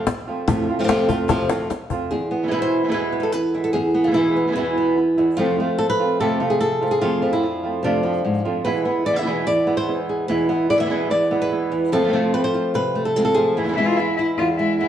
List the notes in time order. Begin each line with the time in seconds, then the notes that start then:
0.07 muted nylon-string guitar stroke, cajon slap
0.27 F3 A3 C4 F4
0.48 F2 C3 F3 A3 C4 F4, muted nylon-string guitar stroke, cajon bass
0.68 F3 A3 C4 F4, cajon slap
0.79 C3 F3 A3 C4 F4
0.84 C3 F3 A3 C4 F4
0.88 F2 C3 F3 A3 C4 F4, cajon slap
1.08 F3 A3 C4 F4, cajon bass
1.28 F2 C3 F3 A3 C4 F4, muted nylon-string guitar stroke, cajon bass
1.49 F3 A3 C4 F4, cajon slap
1.70 muted nylon-string guitar stroke, cajon slap
1.90 F3 A3 C4 F4, cajon bass
2.11 E2 G#4, muted nylon-string guitar stroke
2.31 B3
2.43 B2 E3 G#3 B3 E4
2.48 B2 E3 G#3 B3 E4 B4
2.52 E2 B2 E3 G#3 E4
2.62 C5
2.84 B2 E3 G#3 B3 E4
2.88 B2 E3 G#3 B3 E4 B4
2.93 E2 B2 E3 G#3 B3 E4
3.12 B3
3.20 A4 B4
3.32 B4, muted nylon-string guitar stroke
3.54 E3 G#3 B3 E4
3.64 A4
3.73 E2 G#4, muted nylon-string guitar stroke
3.94 B3
4.04 B2 E3 G#3 B3 E4 F4
4.11 B2 E3 G#3 B3 E4
4.16 E2 B2 E3 G#3 B3 E4
4.36 B3
4.47 B2 E3 G#3 B3 E4
4.52 B2 E3 G#3 B3 E4
4.56 E2 B2 E3 G#3 B3 E4
4.77 B3
4.97 muted nylon-string guitar stroke
5.18 E2 E3 G#3 B3 E4
5.37 F2 C3 F3 A3 C4 F4
5.58 F3 A3 C4 F4
5.78 A4, muted nylon-string guitar stroke
5.90 B4
5.99 F3 A3 C4 F4
6.20 F2 C3 F3 A3 C4 F4 A4
6.40 F3 A3 C4 F4
6.50 G#4
6.60 A4, muted nylon-string guitar stroke
6.81 F3 A3 C4 F4
6.91 G#4
7.01 F2 C3 F3 A3 C4 F4
7.22 F3 A3 C4 F4
7.33 E4
7.43 D4, muted nylon-string guitar stroke
7.63 F3 A3 C4 F4
7.83 F2 C3 F3 A3 C4 D4 F4
8.03 F3 A3 C4 F4
8.24 G#2, muted nylon-string guitar stroke
8.45 F2 F3 A3 C4 F4
8.65 E2 B2 E3 G#3 B3 E4 B4
8.85 E3 G#3 B3 E4
9.05 E3 G#3 B3 E4 D5
9.13 B2 E3 G#3 B3 E4 E5
9.17 B2 E3 G#3 B3 E4
9.22 B2 E3 G#3 B3 E4
9.26 E2 B2 E3 G#3 B3 E4
9.47 E2 D5, muted nylon-string guitar stroke
9.66 E3 G#3 B3 E4
9.77 C5
9.88 E3 G#3 B3 E4
10.09 G#4
10.28 E2 B2 E3 G#3 B3 E4 B4
10.49 E3 G#3 B3 E4
10.69 E3 G#3 B3 E4 D5
10.76 B2 E3 G#3 B3 E4 E5
10.81 B2 E3 G#3 B3 E4
10.85 B2 E3 G#3 B3 E4
10.90 E2 B2 E3 G#3 B3 E4
11.10 E2 D5, muted nylon-string guitar stroke
11.31 E3 G#3 B3 E4
11.42 B4
11.51 E3 G#3 B3 E4
11.72 E2
11.92 F2 C3 F3 A3 C4 F4 A4
12.03 C3 F3 A3 C4 F4
12.08 C3 F3 A3 C4 F4
12.13 F2 C3 F3 A3 C4 F4
12.33 F3 A3 C4 F4 B4
12.44 C5
12.54 F4
12.74 C3 B4, muted nylon-string guitar stroke
12.95 A3
13.05 A4
13.16 F3 G#3 A3 C4 F4 G#4
13.25 A4
13.34 F3 A3 C4 F4 G#4
13.57 E2 B2 E3 G#3 B3 E4
13.63 B2 E3 G#3 B3 E4
13.68 B2 E3 G#3 B3 E4
13.72 B2 E3 G#3 B3 E4
13.77 E2 B2 E3 G#3 B3 E4
13.86 F4
13.97 E3 G#3 B3 E4
14.16 E4
14.38 E2 F4, muted nylon-string guitar stroke
14.58 G#3 E4
14.79 E3 G#3 B3 E4